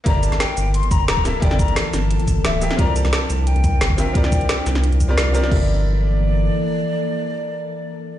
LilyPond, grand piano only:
\new Staff \with { instrumentName = "Grand piano" } { \time 4/4 \key g \dorian \tempo 4 = 176 <bes e' g' a' d''>2.~ <bes e' g' a' d''>8 <bes e' g' a' e''>8 | <bes e' g' a' d''>2.~ <bes e' g' a' d''>8 <bes e' g' a' e''>8 | <c' f' g' bes' d''>2.~ <c' f' g' bes' d''>8 <c' f' g' bes' e''>8 | <c' f' g' bes' d''>2~ <c' f' g' bes' d''>8. <c' f' g' bes' d''>8. <c' f' g' bes' d''>8 |
<bes e' g' a' d''>1~ | <bes e' g' a' d''>1 | }